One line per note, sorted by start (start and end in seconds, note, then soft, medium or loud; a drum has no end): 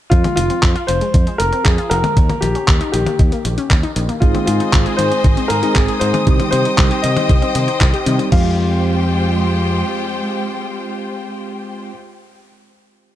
0.10 0.23 F2 medium
0.10 0.21 F3 medium
0.10 0.34 F4 loud
0.10 kick loud
0.10 closed hi-hat medium
0.24 0.37 G#3 medium
0.24 closed hi-hat soft
0.24 high tom medium
0.36 0.49 F1 loud
0.36 0.43 F3 medium
0.36 0.89 F4 loud
0.36 closed hi-hat loud
0.50 0.59 C4 medium
0.50 closed hi-hat soft
0.63 0.74 F2 medium
0.63 0.68 F3 medium
0.63 kick loud
0.63 clap loud
0.63 closed hi-hat medium
0.76 0.85 F4 loud
0.76 closed hi-hat soft
0.87 1.00 F1 medium
0.87 1.01 F3 loud
0.87 1.41 C5 loud
0.87 closed hi-hat medium
1.01 1.07 G#3 medium
1.01 closed hi-hat soft
1.14 1.26 F2 medium
1.14 1.24 F3 medium
1.14 kick loud
1.14 closed hi-hat medium
1.27 1.39 G#3 medium
1.27 closed hi-hat soft
1.38 1.51 F1 medium
1.38 1.45 F3 medium
1.38 1.66 A#4 loud
1.38 closed hi-hat loud
1.52 1.62 C4 medium
1.52 closed hi-hat soft
1.64 1.77 F2 medium
1.64 1.71 F3 medium
1.64 1.91 G#4 loud
1.64 kick loud
1.64 clap loud
1.64 closed hi-hat medium
1.78 1.88 F4 loud
1.78 closed hi-hat soft
1.90 2.02 F1 loud
1.90 2.03 F3 loud
1.90 2.43 A#4 loud
1.90 closed hi-hat loud
2.04 2.09 G#3 medium
2.04 closed hi-hat soft
2.04 high tom medium
2.17 2.28 D#2 loud
2.17 2.26 D#3 medium
2.17 kick loud
2.17 closed hi-hat medium
2.29 2.42 A#3 medium
2.29 closed hi-hat soft
2.29 high tom medium
2.41 2.54 A#1 loud
2.41 2.48 D#3 medium
2.41 2.91 G4 loud
2.41 closed hi-hat loud
2.55 2.65 C#4 medium
2.55 closed hi-hat soft
2.68 2.79 D#2 medium
2.68 2.74 D#3 medium
2.68 kick loud
2.68 clap loud
2.68 closed hi-hat medium
2.81 2.90 D#4 loud
2.81 closed hi-hat soft
2.92 3.05 A#1 medium
2.92 3.06 D#3 loud
2.92 3.66 G4 medium
2.92 closed hi-hat medium
3.06 3.12 A#3 medium
3.06 closed hi-hat soft
3.06 high tom medium
3.19 3.31 D#2 medium
3.19 3.29 D#3 medium
3.19 kick loud
3.19 closed hi-hat medium
3.32 3.44 A#3 medium
3.32 closed hi-hat soft
3.45 3.56 A#1 medium
3.45 3.51 D#3 medium
3.45 closed hi-hat loud
3.58 3.67 C#4 medium
3.58 closed hi-hat soft
3.70 3.82 D#2 medium
3.70 3.76 D#3 medium
3.70 kick loud
3.70 clap loud
3.70 closed hi-hat medium
3.83 3.93 D#4 loud
3.83 closed hi-hat soft
3.96 4.08 A#1 loud
3.96 4.08 D#3 loud
3.96 closed hi-hat medium
4.09 4.15 A#3 medium
4.09 closed hi-hat soft
4.20 4.33 G#1 loud
4.20 4.31 D#3 medium
4.20 5.60 G#3 loud
4.20 5.60 C4 medium
4.20 5.60 D#4 medium
4.20 4.44 F4 medium
4.20 5.60 G#4 loud
4.20 6.25 C5 medium
4.20 6.25 D#5 medium
4.20 6.25 G#5 medium
4.20 8.28 D#6 medium
4.20 kick loud
4.20 closed hi-hat medium
4.34 4.47 C4 medium
4.34 closed hi-hat soft
4.34 high tom medium
4.46 4.59 G#2 loud
4.46 4.53 D#3 medium
4.46 4.99 F4 loud
4.46 closed hi-hat loud
4.60 4.70 D#4 medium
4.60 closed hi-hat soft
4.73 4.85 G#1 medium
4.73 4.79 D#3 medium
4.73 kick loud
4.73 clap loud
4.73 closed hi-hat medium
4.86 4.95 G#4 loud
4.86 closed hi-hat soft
4.97 5.10 G#2 medium
4.97 5.11 D#3 loud
4.97 5.51 C5 loud
4.97 closed hi-hat medium
5.12 5.17 C4 medium
5.12 closed hi-hat soft
5.24 5.36 G#1 medium
5.24 5.34 D#3 medium
5.24 kick loud
5.24 closed hi-hat medium
5.37 5.49 C4 medium
5.37 closed hi-hat soft
5.48 5.62 G#2 medium
5.48 5.56 D#3 medium
5.48 5.76 A#4 medium
5.48 closed hi-hat medium
5.63 5.98 G#3 medium
5.63 5.98 C4 medium
5.63 5.72 D#4 medium
5.63 5.98 D#4 medium
5.63 5.98 G#4 loud
5.63 closed hi-hat soft
5.74 5.87 G#1 medium
5.74 5.81 D#3 medium
5.74 6.01 G#4 medium
5.74 kick loud
5.74 clap loud
5.74 closed hi-hat medium
5.88 5.98 G#4 loud
5.88 closed hi-hat soft
5.99 6.13 G#2 loud
5.99 6.14 D#3 loud
5.99 6.24 G#3 medium
5.99 6.24 C4 medium
5.99 6.24 D#4 medium
5.99 6.24 G#4 medium
5.99 6.49 C5 loud
5.99 closed hi-hat medium
6.14 6.20 C4 medium
6.14 closed hi-hat soft
6.14 high tom medium
6.27 6.38 C2 loud
6.27 6.36 D#3 medium
6.27 7.65 G3 medium
6.27 7.65 C4 medium
6.27 7.65 D#4 medium
6.27 7.65 G4 loud
6.27 8.30 C5 medium
6.27 8.30 D#5 medium
6.27 8.30 G5 medium
6.27 kick loud
6.27 closed hi-hat medium
6.40 6.52 C4 medium
6.40 closed hi-hat soft
6.40 high tom medium
6.51 6.64 C3 loud
6.51 6.58 D#3 medium
6.51 7.05 C5 loud
6.51 closed hi-hat medium
6.65 6.75 D#4 medium
6.65 closed hi-hat soft
6.78 6.90 C2 medium
6.78 6.84 D#3 medium
6.78 kick loud
6.78 clap loud
6.78 closed hi-hat medium
6.91 7.00 G4 loud
6.91 closed hi-hat soft
7.02 7.15 C3 medium
7.02 7.16 D#3 loud
7.02 7.76 D#5 loud
7.02 closed hi-hat medium
7.17 7.22 C4 medium
7.17 closed hi-hat soft
7.17 high tom medium
7.29 7.41 C2 medium
7.29 7.39 D#3 medium
7.29 kick loud
7.29 closed hi-hat medium
7.42 7.55 C4 medium
7.42 closed hi-hat soft
7.55 7.67 C3 medium
7.55 7.61 D#3 medium
7.55 closed hi-hat medium
7.68 7.77 D#4 medium
7.68 closed hi-hat soft
7.81 7.92 C2 loud
7.81 7.86 D#3 medium
7.81 kick loud
7.81 clap loud
7.81 closed hi-hat medium
7.93 8.03 G4 loud
7.93 closed hi-hat soft
8.06 8.18 C3 loud
8.06 8.19 D#3 loud
8.06 8.29 G3 medium
8.06 8.29 C4 medium
8.06 8.29 D#4 medium
8.06 8.29 G4 loud
8.06 closed hi-hat medium
8.19 8.25 C4 medium
8.19 closed hi-hat soft
8.32 9.82 F2 medium
8.32 8.56 F3 medium
8.32 11.92 G#3 medium
8.32 11.92 C4 medium
8.32 11.92 F4 medium
8.32 11.92 G4 medium
8.32 11.92 C5 medium
8.32 11.92 F5 medium
8.32 11.92 G5 medium
8.32 kick loud
8.32 crash medium